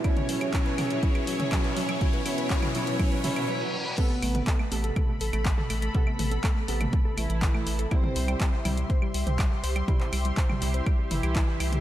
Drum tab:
CC |----------------|----------------|x---------------|----------------|
HH |xxoxxxoxxxoxxxox|xxoxxxoxxxox----|x-oxx-oxx-oxx-ox|x-oxx-oxx-oxx-ox|
CL |x--x--x--x--x--x|--x--x--x--x----|--x--x--x--x--x-|-x--x--x--x--x--|
CP |----x-------x---|----x-----------|----x-------x---|----x-------x---|
T2 |-o----o----o----|o----o----o-----|---o----o----o--|--o----o----o---|
BD |o---o---o---o---|o---o---o-------|o---o---o---o---|o---o---o---o---|

CC |----------------|----------------|
HH |x-oxx-oxx-oxx-ox|x-oxx-oxx-oxx-ox|
CL |x--x--x--x--x--x|--x--x--x--x--x-|
CP |----x-------x---|-x--x-------x---|
T2 |-o----o----o----|o----o----o----o|
BD |o---o---o---o---|o---o---o---o---|